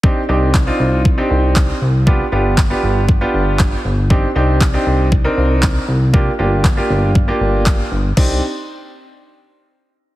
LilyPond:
<<
  \new Staff \with { instrumentName = "Grand piano" } { \time 4/4 \key c \minor \tempo 4 = 118 <c' d' ees' g'>16 r16 <c' d' ees' g'>8 r16 <c' d' ees' f'>8. r16 <c' d' ees' g'>4 r8. | <b d' f' g'>16 r16 <b d' f' g'>8 r16 <b d' f' g'>8. r16 <b d' f' g'>4 r8. | <c' d' ees' g'>16 r16 <c' d' ees' g'>8 r16 <c' d' ees' g'>8. r16 <c' d' ees' bes'>4 r8. | <bes d' f' g'>16 r16 <bes d' f' g'>8 r16 <bes d' f' g'>8. r16 <bes d' f' g'>4 r8. |
<c' d' ees' g'>8 r2. r8 | }
  \new Staff \with { instrumentName = "Analog synth bass" } { \clef bass \time 4/4 \key c \minor r8 c,4 c,4 c,4 c,8~ | c,8 g,,4 g,,4 g,,4 g,,8~ | g,,8 c,4 c,4 c,4 c,8~ | c,8 g,,4 g,,4 g,,4 g,,8 |
c,8 r2. r8 | }
  \new DrumStaff \with { instrumentName = "Drums" } \drummode { \time 4/4 bd4 <hc bd>4 bd4 <hc bd>4 | bd4 <hc bd>4 bd4 <hc bd>4 | bd4 <hc bd>4 bd4 <hc bd>4 | bd4 <hc bd>4 bd4 <hc bd>4 |
<cymc bd>4 r4 r4 r4 | }
>>